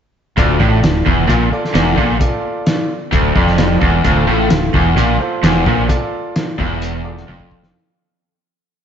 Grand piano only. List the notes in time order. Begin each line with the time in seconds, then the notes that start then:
0.37 F4 A4 D5
1.52 F4 A4 D5
2.20 F4 A4 D5
3.36 F4 A4 D5
4.04 F4 A4 F5
5.19 F4 A4 C5
5.88 F4 A4 D5
7.04 F4 A4 D5